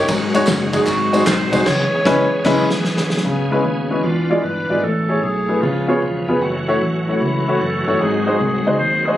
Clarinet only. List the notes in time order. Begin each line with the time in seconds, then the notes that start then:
0.74 G#4
0.87 F#4
1.27 C5
1.66 C#5
3.91 F#4
4.05 F4
4.43 B4
4.84 A4
5.23 G#4
5.62 F4
5.89 F4
7.07 F#4
7.20 E4
7.60 A4
7.99 G#4
8.26 G#4
8.39 G#4
8.79 C5
9.06 G#4